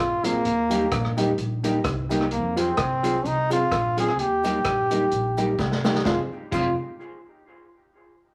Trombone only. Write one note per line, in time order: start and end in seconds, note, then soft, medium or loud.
0.00 0.26 F4 loud
0.25 1.18 A#3 loud
2.33 2.60 A#3 medium
2.58 3.28 C4 loud
3.27 3.51 D#4 loud
3.53 3.95 F4 loud
4.00 4.23 G#4 loud
4.21 5.86 G4 loud
6.06 6.20 F4 medium
6.52 6.76 F4 loud